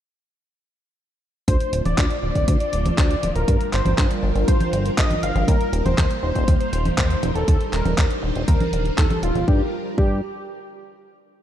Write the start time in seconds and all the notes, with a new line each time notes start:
1.48 D2 A3 D4 F4 C5, kick, closed hi-hat
1.60 closed hi-hat
1.73 D1, closed hi-hat
1.85 D1 D5, closed hi-hat, high conga
1.98 D2, kick, clap, closed hi-hat
2.10 closed hi-hat
2.23 D1 D5
2.35 D1, kick, closed hi-hat
2.48 D2, kick, closed hi-hat
2.60 D5, closed hi-hat
2.73 D1, closed hi-hat
2.86 closed hi-hat, high conga
2.98 D2 D5, kick, clap, closed hi-hat
3.11 closed hi-hat
3.23 D1, closed hi-hat, high conga
3.35 D1 A#4, closed hi-hat
3.48 G2 G3 D4 A#4, kick, closed hi-hat
3.61 closed hi-hat
3.73 G1 C5, clap, closed hi-hat
3.85 G1, closed hi-hat, high conga
3.98 G2, kick, clap, closed hi-hat
4.11 closed hi-hat
4.23 G1
4.35 G1, closed hi-hat
4.48 G2 C5, kick, closed hi-hat
4.61 closed hi-hat, high conga
4.73 G1, closed hi-hat
4.86 closed hi-hat
4.98 G2 D#5, kick, clap, closed hi-hat
5.11 closed hi-hat, high conga
5.23 G1 F5, closed hi-hat
5.35 G1, closed hi-hat, high conga
5.48 D#2 A#3 D#4 A#4, kick, closed hi-hat
5.61 closed hi-hat
5.73 D#1, closed hi-hat
5.85 D#1 C5, closed hi-hat, high conga
5.98 D#2, kick, clap, closed hi-hat
6.11 closed hi-hat
6.23 D#1 C5
6.35 D#1, kick, closed hi-hat
6.48 D#2, kick, closed hi-hat
6.60 C5, closed hi-hat
6.73 D#1, closed hi-hat
6.85 closed hi-hat, high conga
6.98 D#2 C5, kick, clap, closed hi-hat
7.10 closed hi-hat
7.23 D#1, closed hi-hat, high conga
7.35 D#1 A4, closed hi-hat
7.48 D#2 D4 C5, kick, closed hi-hat
7.61 closed hi-hat
7.73 D#1 A#4, clap, closed hi-hat
7.85 D#1, closed hi-hat, high conga
7.98 D#2, kick, clap, closed hi-hat
8.10 closed hi-hat
8.23 D#1
8.35 D#1, closed hi-hat
8.48 D#2 A#4, kick, closed hi-hat
8.60 closed hi-hat, high conga
8.73 D#1, closed hi-hat
8.85 closed hi-hat
8.98 D#2 A4, kick, clap, closed hi-hat
9.10 closed hi-hat, high conga
9.23 D#1 F4, closed hi-hat
9.35 D#1, closed hi-hat, high conga
9.48 G2 G3 D4 F4 G4 A#4, kick
9.98 G2 G4, kick